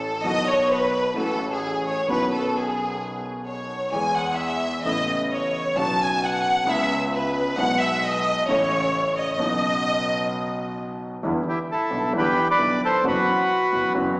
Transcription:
0.00 0.20 A1 medium
0.00 0.20 A2 medium
0.00 0.19 E3 medium
0.00 0.20 A3 medium
0.00 0.20 C#4 medium
0.00 0.21 A4 medium
0.00 0.23 A4 medium
0.22 1.12 B1 medium
0.22 1.12 B2 medium
0.22 1.11 D#3 medium
0.22 1.11 F#3 soft
0.22 1.12 B3 soft
0.22 0.48 D#5 loud
0.26 1.13 F#4 medium
0.49 0.71 C#5 medium
0.72 1.18 B4 medium
1.14 2.04 A1 medium
1.14 2.04 A2 medium
1.14 2.03 E3 medium
1.14 2.03 A3 medium
1.14 2.04 C#4 medium
1.14 2.04 F#4 medium
1.18 1.50 A4 medium
1.54 1.85 G#4 medium
1.88 2.10 C#5 medium
2.07 3.85 B1 medium
2.07 3.85 B2 medium
2.07 3.84 D#3 medium
2.07 3.84 B3 soft
2.07 3.85 C#4 soft
2.07 3.86 F#4 medium
2.07 2.31 B4 medium
2.35 2.57 A4 medium
2.58 3.26 G#4 medium
3.48 3.91 C#5 medium
3.92 4.81 E2 medium
3.92 4.82 E2 medium
3.92 4.81 E3 medium
3.92 4.81 G#3 soft
3.92 4.82 B3 soft
3.92 4.82 G#4 medium
3.92 4.17 G#5 medium
4.16 4.40 F#5 medium
4.39 4.85 E5 medium
4.83 5.72 A1 medium
4.83 5.73 A1 medium
4.83 5.72 A2 medium
4.83 5.71 C#3 medium
4.83 5.72 A3 soft
4.83 5.73 B3 soft
4.83 5.17 D#5 loud
4.88 5.73 E4 medium
5.32 5.74 C#5 medium
5.75 6.63 B1 medium
5.75 6.64 B1 medium
5.75 6.63 B2 medium
5.75 6.62 C#3 medium
5.75 6.62 F#3 soft
5.75 6.63 B3 soft
5.75 6.00 A5 loud
5.79 6.64 F#4 medium
6.02 6.23 G#5 medium
6.23 6.68 F#5 loud
6.65 7.53 C#2 medium
6.65 7.54 C#2 medium
6.65 7.53 C#3 medium
6.65 7.52 G#3 medium
6.65 7.53 B3 medium
6.65 7.54 E4 medium
6.65 7.02 E5 loud
7.13 7.55 B4 medium
7.56 8.43 B1 medium
7.56 8.43 B2 medium
7.56 8.43 G#3 medium
7.56 8.43 B3 soft
7.56 8.42 D#4 medium
7.56 7.80 F#5 loud
7.60 8.44 E4 medium
7.80 8.02 E5 medium
8.03 8.48 D#5 loud
8.47 9.34 A1 medium
8.47 9.35 A1 medium
8.47 9.34 A2 medium
8.47 9.33 C#3 medium
8.47 9.34 E3 medium
8.47 9.35 A3 medium
8.47 9.35 E4 medium
8.47 9.12 C#5 loud
9.17 10.77 D#5 medium
9.37 11.14 B1 medium
9.37 11.14 B2 medium
9.37 11.13 C#3 medium
9.37 11.14 F#3 soft
9.37 11.15 B3 medium
9.41 11.15 D#4 medium
11.23 11.43 E2 medium
11.23 11.42 D3 medium
11.23 11.42 E3 medium
11.23 11.42 G3 medium
11.23 11.42 B3 medium
11.23 11.42 E4 medium
11.49 11.59 E4 medium
11.49 11.59 G4 medium
11.72 12.13 E4 medium
11.72 12.12 A4 medium
11.91 12.10 B1 soft
11.91 12.10 B1 medium
11.91 12.10 B2 soft
11.91 12.10 D3 soft
11.91 12.10 G3 soft
11.91 12.10 B3 soft
11.91 12.10 E4 soft
12.13 12.33 E2 medium
12.13 12.32 D3 medium
12.13 12.33 E3 medium
12.13 12.32 G3 medium
12.13 12.33 B3 medium
12.13 12.33 E4 medium
12.18 12.48 G4 medium
12.18 12.48 B4 medium
12.51 12.81 B4 medium
12.51 12.81 D5 medium
12.58 12.78 B1 soft
12.58 12.78 B1 medium
12.58 12.78 B2 medium
12.58 12.78 D3 soft
12.58 12.78 G3 soft
12.58 12.78 B3 soft
12.58 12.78 E4 soft
12.85 13.05 A4 medium
12.85 13.05 C5 medium
13.04 13.24 F#1 medium
13.04 13.23 F#2 medium
13.04 13.23 E3 medium
13.04 13.24 F#3 medium
13.04 13.24 B3 medium
13.04 13.24 F#4 medium
13.08 13.93 F#4 medium
13.08 13.93 B4 medium
13.72 13.92 F#1 medium
13.72 13.92 F#2 medium
13.72 13.92 E3 soft
13.72 13.92 F#3 medium
13.72 13.92 B3 soft
13.72 13.92 F#4 soft
13.95 14.15 F#1 medium
13.95 14.14 F#2 medium
13.95 14.14 E3 medium
13.95 14.14 F#3 medium
13.95 14.14 B3 medium
13.95 14.14 F#4 medium

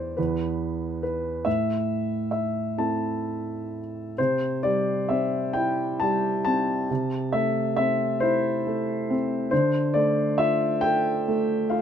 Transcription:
0.00 0.14 E2 soft
0.00 0.19 C5 medium
0.00 0.20 D5 medium
0.17 1.43 E2 soft
0.17 1.01 B4 medium
1.03 1.47 B4 medium
1.45 4.14 A2 soft
1.45 2.30 E5 medium
2.31 2.79 E5 medium
2.78 4.13 A3 soft
2.78 4.14 C4 soft
2.78 4.14 E4 soft
2.78 3.79 A5 medium
4.18 6.86 C3 soft
4.18 4.66 C5 medium
4.63 6.01 G3 soft
4.63 5.11 D5 medium
5.09 6.45 C4 soft
5.09 5.57 E5 medium
5.53 6.86 E4 soft
5.53 5.97 G5 medium
6.00 6.88 G3 soft
6.00 6.42 A5 medium
6.45 6.89 C4 soft
6.45 7.36 A5 medium
6.91 9.48 C3 medium
7.33 8.65 A3 medium
7.33 7.75 E5 medium
7.76 9.09 C4 medium
7.76 8.22 E5 medium
8.20 9.48 E4 medium
8.20 9.15 C5 medium
8.67 9.50 A3 medium
9.10 9.51 C4 medium
9.51 11.82 D3 medium
9.51 9.96 C5 medium
9.94 11.26 A3 medium
9.94 10.40 D5 medium
10.38 11.69 F4 medium
10.38 10.84 E5 medium
10.81 11.82 A4 medium
10.81 11.74 G5 medium
11.28 11.82 A3 medium
11.70 11.82 F4 medium
11.70 11.82 F5 medium

